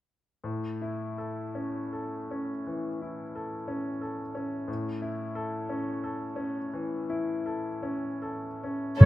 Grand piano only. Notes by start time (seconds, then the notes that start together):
0.44 A2
0.82 E4
1.18 A4
1.55 C#4
1.93 A4
2.31 C#4
2.67 E3
3.02 E4
3.35 A4
3.68 C#4
4.01 A4
4.35 C#4
4.68 A2
5.02 E4
5.35 A4
5.69 C#4
6.04 A4
6.36 C#4
6.74 E3
7.10 E4
7.46 A4
7.83 C#4
8.22 A4
8.64 C#4
9.01 A2